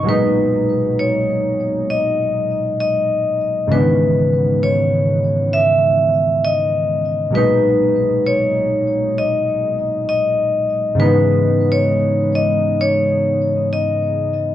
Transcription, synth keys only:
X:1
M:4/4
L:1/8
Q:"Swing 16ths" 1/4=66
K:G#m
V:1 name="Synth keys" clef=bass
[A,,B,,F,G,D]8 | [G,,C,D,E,G,B,=D]8 | [A,,B,,F,G,D]8 | [G,,C,D,E,G,B,D]8 |]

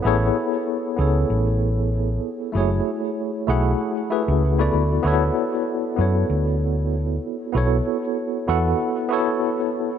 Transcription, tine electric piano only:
X:1
M:4/4
L:1/16
Q:"Swing 16ths" 1/4=96
K:A
V:1 name="Tine electric piano"
[B,EGAc]6 [B,EGAc]8- [B,EGAc]2 | [A,EFGc]6 [A,EFGf]4 [A,EFGB]3 [B,EFAd]3 | [B,EFAc]6 [B,EFAc]8- [B,EFAc]2 | [B,EFAc]6 [B,EFAf]4 [B,EFAc]6 |]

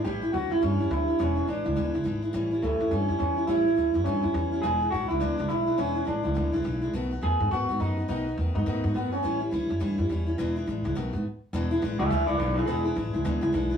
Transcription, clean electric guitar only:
X:1
M:4/4
L:1/8
Q:"Swing" 1/4=209
K:Emix
V:1 name="Clean electric guitar"
=G2 F E C2 E2 | C2 D3 z3 | z2 A,2 C2 C2 | E4 C4 |
G2 F E D2 E2 | C2 D3 z3 | z2 G2 F2 ^D2 | ^D2 z D3 B, C- |
C z6 z | z8 | z3 [Ge] [Ge] [Bd] [Bd] [GB] | [GB] G6 z |]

